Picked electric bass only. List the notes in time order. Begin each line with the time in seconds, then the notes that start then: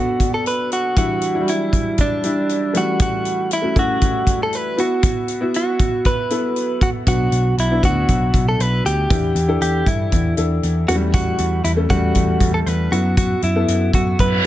7.06 B1
7.32 B1
7.57 B1
7.83 D2
8.09 B1
8.34 B1
8.59 B1
8.85 D2
9.10 E2
9.35 E2
9.61 E2
9.87 G2
10.12 E2
10.38 E2
10.63 E2
10.88 E2
11.39 E2
11.64 E2
11.90 E2
12.16 E2
12.40 E2
12.66 E2
12.92 F#2
13.43 F#2
13.68 F#2
13.93 F#2
14.19 F#2